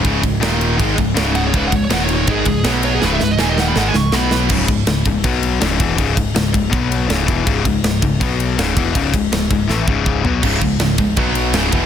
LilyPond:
<<
  \new Staff \with { instrumentName = "Lead electric guitar" } { \time 4/4 \key cis \minor \tempo 4 = 162 r2. r8 fis''16 cis''16 | b'16 fis''16 cis''16 cis''16 fis''16 cis''16 cis''8 gis'4 r8 cis''16 gis'16 | b'16 e''16 b'16 dis''16 gis''16 dis''16 fis''16 b''16 fis''16 gis''16 cis'''8 b''8 r8 | r1 |
r1 | r1 | r1 | r1 | }
  \new Staff \with { instrumentName = "Distorted electric guitar" } { \clef bass \time 4/4 \key cis \minor <cis, gis, cis>8 <cis, gis,>8 <dis, ais, dis>4 <gis, dis gis>8 <cis, gis,>8 <cis, gis, cis>4 | <cis, gis, cis>8 <cis, gis,>8 <dis, ais, dis>4 <gis, dis gis>8 <cis, gis,>8 <b, fis b>4 | <cis, gis, cis>8 <cis, gis,>8 <dis, ais, dis>4 <gis, dis gis>8 <cis, gis,>8 <b, fis b>4 | <cis, gis, cis>8 <cis, gis,>8 <cis, gis,>8 <cis, gis,>8 <b, fis b>4 <cis, gis, cis>8 <e, b, e>8 |
<cis, gis, cis>8 <cis, gis,>8 <cis, gis,>8 <cis, gis,>8 <b, fis b>4 <cis, gis, cis>8 <e, b, e>8 | <cis, gis, cis>8 <cis, gis,>8 <cis, gis,>8 <cis, gis,>8 <b, fis b>4 <cis, gis, cis>8 <e, b, e>8 | <cis, gis, cis>8 <cis, gis,>8 <cis, gis,>8 <cis, gis,>8 <a, e a>8 <cis, gis, cis>4 <b, fis b>8 | <cis, gis, cis>8 <cis, gis,>8 <cis, gis,>8 <cis, gis,>8 <b, fis b>4 <cis, gis, cis>8 <e, b, e>8 | }
  \new Staff \with { instrumentName = "Distorted electric guitar" } { \clef bass \time 4/4 \key cis \minor <cis, gis, cis>8 <cis, gis,>8 <dis, ais, dis>4 <gis, dis gis>8 <cis, gis,>8 <cis, gis, cis>4 | <cis, gis, cis>8 <cis, gis,>8 <dis, ais, dis>4 <gis, dis gis>8 <cis, gis,>8 <b, fis b>4 | <cis, gis, cis>8 <cis, gis,>8 <dis, ais, dis>4 <gis, dis gis>8 <cis, gis,>8 <b, fis b>4 | r1 |
r1 | r1 | r1 | <cis, gis, cis>8 <cis, gis,>8 <cis, gis,>8 <cis, gis,>8 <b, fis b>4 <cis, gis, cis>8 <e, b, e>8 | }
  \new Staff \with { instrumentName = "Picked electric bass" } { \clef bass \time 4/4 \key cis \minor cis,,8 cis,,8 dis,,4 gis,,8 cis,,8 cis,,4 | cis,,8 cis,,8 dis,,4 gis,,8 cis,,8 b,,4 | cis,,8 cis,,8 dis,,4 gis,,8 cis,,8 b,,4 | cis,,8 cis,,8 cis,,8 cis,,8 b,,4 cis,,8 e,,8 |
cis,,8 cis,,8 cis,,8 cis,,8 b,,4 cis,,8 e,,8 | cis,,8 cis,,8 cis,,8 cis,,8 b,,4 cis,,8 e,,8 | cis,,8 cis,,8 cis,,8 cis,,8 a,,8 cis,,4 b,,8 | cis,,8 cis,,8 cis,,8 cis,,8 b,,4 cis,,8 e,,8 | }
  \new DrumStaff \with { instrumentName = "Drums" } \drummode { \time 4/4 <bd cymr>8 <bd cymr>8 <cymr sn>8 cymr8 <bd cymr>8 <bd cymr>8 <cymr sn>8 cymr8 | <bd cymr>8 <bd cymr>8 <cymr sn>8 cymr8 <bd cymr>8 <bd cymr>8 <cymr sn>8 cymr8 | sn8 sn8 sn8 sn8 sn8 sn8 sn8 sn8 | <cymc bd>8 <bd cymr>8 <cymr sn>8 <bd cymr>8 <bd cymr>8 cymr8 <cymr sn>8 <bd cymr>8 |
<bd cymr>8 <bd cymr>8 <cymr sn>8 <bd cymr>8 <bd cymr>8 cymr8 <cymr sn>8 <bd cymr>8 | <bd cymr>8 <bd cymr>8 <cymr sn>8 <bd cymr>8 <bd cymr>8 cymr8 <cymr sn>8 <bd cymr>8 | <bd cymr>8 <bd cymr>8 <cymr sn>8 <bd cymr>8 sn8 bd8 bd8 tomfh8 | <cymc bd>8 <bd cymr>8 <cymr sn>8 <bd cymr>8 <bd cymr>8 cymr8 <cymr sn>8 <bd cymr>8 | }
>>